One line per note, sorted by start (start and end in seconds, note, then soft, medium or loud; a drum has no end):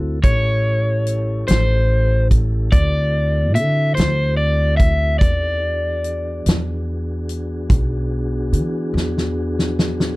0.00 0.20 D2 medium
0.00 0.20 C4 medium
0.00 0.20 E4 medium
0.00 0.20 F#4 medium
0.00 0.20 A4 medium
0.24 1.44 A1 medium
0.24 2.70 C#4 medium
0.24 2.71 E4 medium
0.24 2.71 G4 medium
0.24 2.70 A4 medium
0.24 1.47 C#5 loud
0.24 kick medium
0.24 closed hi-hat medium
1.07 closed hi-hat medium
1.48 2.69 A1 medium
1.48 2.27 C5 medium
1.48 snare medium
1.48 closed hi-hat medium
2.31 kick medium
2.31 closed hi-hat medium
2.72 3.57 D2 medium
2.72 5.19 C4 medium
2.72 5.19 E4 medium
2.72 5.19 F#4 medium
2.72 5.19 A4 medium
2.72 3.55 D5 medium
2.72 kick medium
2.72 closed hi-hat medium
3.55 3.94 D3 medium
3.55 3.94 E5 medium
3.55 closed hi-hat soft
3.95 5.18 D2 medium
3.95 4.37 C5 medium
3.95 closed hi-hat medium
4.00 snare medium
4.37 4.77 D5 medium
4.77 5.18 E5 medium
4.77 kick medium
4.77 closed hi-hat soft
5.19 6.42 E2 medium
5.19 5.63 C4 medium
5.19 5.63 D#4 medium
5.19 5.63 G4 medium
5.19 5.63 A4 medium
5.19 9.31 D5 medium
5.19 kick medium
5.19 closed hi-hat medium
5.62 10.15 B3 medium
5.62 10.15 D4 medium
5.62 10.15 F#4 medium
5.62 10.15 G#4 medium
6.04 closed hi-hat soft
6.46 7.66 E2 medium
6.46 snare loud
6.46 closed hi-hat medium
7.29 closed hi-hat medium
7.70 8.54 B1 medium
7.70 kick medium
7.70 closed hi-hat medium
8.53 8.91 E3 medium
8.53 closed hi-hat medium
8.94 10.15 E2 medium
8.94 snare medium
9.18 snare soft
9.59 snare medium
9.79 snare medium
10.00 snare medium